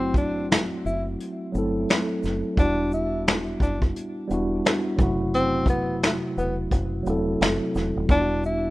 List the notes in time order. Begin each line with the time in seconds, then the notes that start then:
Already playing: F#1 F#3 A3 C4 E4 F#4
0.14 D4, kick, shaker
0.51 finger snap, snare, closed hi-hat
0.85 F#1 E4, shaker
1.20 closed hi-hat
1.52 G1 F#3 A3 C4, shaker
1.57 E4 A4
1.89 finger snap, snare, closed hi-hat
2.23 F#1, snare, shaker
2.55 E1 G3 B3 D4, kick, closed hi-hat
2.60 E4 F#4
2.92 E4, shaker
3.27 finger snap, snare, closed hi-hat
3.60 F#1 D4, kick, shaker
3.82 kick
3.96 closed hi-hat
4.27 E1 G3 B3 D4, closed hi-hat, shaker
4.32 E4 F#4
4.65 finger snap, snare, closed hi-hat
4.96 F#1 C3 F#3 A3, kick, shaker
5.01 E4 F#4
5.34 C4, closed hi-hat
5.66 B3, kick, closed hi-hat, shaker
6.03 finger snap, snare, closed hi-hat
6.37 E1 B3, shaker
6.71 F#1, kick, closed hi-hat
7.03 E1 F#3 A3 C4, closed hi-hat, shaker
7.08 E4 A4
7.41 F#1, finger snap, snare, closed hi-hat
7.75 E1, snare, shaker
7.96 D#1
8.07 E1 G3 B3 D4, kick, closed hi-hat
8.12 E4 F4
8.20 F#4
8.44 E4, shaker